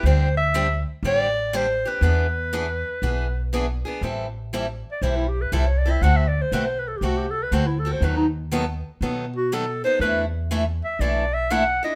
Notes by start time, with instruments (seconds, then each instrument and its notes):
0.03 upright bass D2, steel-string acoustic guitar D3 G3 C4 D4 G4, clarinet C5
0.37 clarinet E5
0.54 steel-string acoustic guitar D3 G3 C4 D4 G4
1.03 upright bass A1, steel-string acoustic guitar D3 G3 C4 D4 G4
1.07 clarinet D5
1.53 steel-string acoustic guitar D3 G3 C4 D4 G4, clarinet C5
1.85 steel-string acoustic guitar C4 D4 G4, clarinet B4
2.01 upright bass E2, steel-string acoustic guitar E3 B3 D4 G#4
2.53 steel-string acoustic guitar E3 B3 D4 G#4
3.02 upright bass B1, steel-string acoustic guitar E3 B3 D4 G#4
3.53 steel-string acoustic guitar E3 B3 D4 G#4
3.85 steel-string acoustic guitar B3 D4 G#4
4.01 upright bass A1, steel-string acoustic guitar E3 G3 C4 E4 A4
4.53 steel-string acoustic guitar E3 G3 C4 E4 A4
4.92 clarinet D5
5.02 upright bass B1, steel-string acoustic guitar E3 G3 C4 E4 A4, clarinet C5
5.17 clarinet E4
5.28 clarinet G4
5.42 clarinet B4
5.52 upright bass C2, steel-string acoustic guitar E3 G3 C4 E4 A4, clarinet C5
5.66 clarinet C#5
5.78 clarinet D5
5.86 steel-string acoustic guitar C4 E4 A4
5.91 clarinet E5
6.01 upright bass D2, steel-string acoustic guitar D3 A3 C4 F#4 A4, clarinet F#5
6.17 clarinet E5
6.28 clarinet D5
6.42 clarinet C5
6.52 upright bass B1, steel-string acoustic guitar D3 A3 C4 F#4 A4, clarinet B4
6.66 clarinet C5
6.79 clarinet B4
6.88 clarinet A4
6.97 upright bass C2, clarinet G4
7.02 steel-string acoustic guitar D3 A3 C4 F#4 A4, clarinet F#4
7.18 clarinet G4
7.30 clarinet A4
7.43 clarinet B4
7.51 upright bass D2, steel-string acoustic guitar D3 A3 C4 F#4 A4, clarinet C5
7.67 clarinet E4
7.79 clarinet A4
7.85 steel-string acoustic guitar C4 F#4 A4
7.92 clarinet C5
8.01 upright bass D#2, steel-string acoustic guitar D#3 F#3 B3 D#4 A4, clarinet B4
8.17 clarinet D#4
8.52 steel-string acoustic guitar D#3 F#3 B3 D#4 A4
9.01 upright bass B2, steel-string acoustic guitar D#3 F#3 B3 D#4 A4
9.36 clarinet F#4
9.52 steel-string acoustic guitar D#3 F#3 B3 D#4 A4, clarinet A4
9.84 steel-string acoustic guitar B3 D#4 A4, clarinet C5
9.99 upright bass E2, steel-string acoustic guitar E3 A3 D4 E4 A4, clarinet B4
10.51 steel-string acoustic guitar E3 A3 D4 E4 A4
10.85 clarinet E5
10.99 upright bass B1, steel-string acoustic guitar E3 A3 D4 E4 A4, clarinet D5
11.34 clarinet E5
11.50 steel-string acoustic guitar E3 A3 D4 E4 A4, clarinet F#5
11.83 steel-string acoustic guitar D4 E4 A4, clarinet D#5